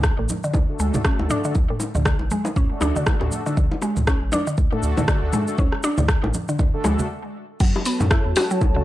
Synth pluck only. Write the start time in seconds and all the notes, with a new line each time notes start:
0.19 A2
0.44 D3
0.55 D3
0.80 G#3
1.05 C#4
1.30 D4
1.45 D3
1.70 A2
1.95 D3
2.06 D3
2.32 G#3
2.57 C#4
2.82 D4
2.96 D3
3.21 A2
3.46 D3
3.57 D3
3.82 G#3
4.07 C#4
4.33 D4
4.47 D3
4.73 A2
4.98 D3
5.08 D3
5.33 G#3
5.59 C#4
5.84 D4
5.98 D3
6.23 A2
6.49 D3
6.59 D3
6.85 G#3
7.60 F#3
7.86 B3
8.11 E4
8.37 F#4
8.51 F#3
8.76 C#3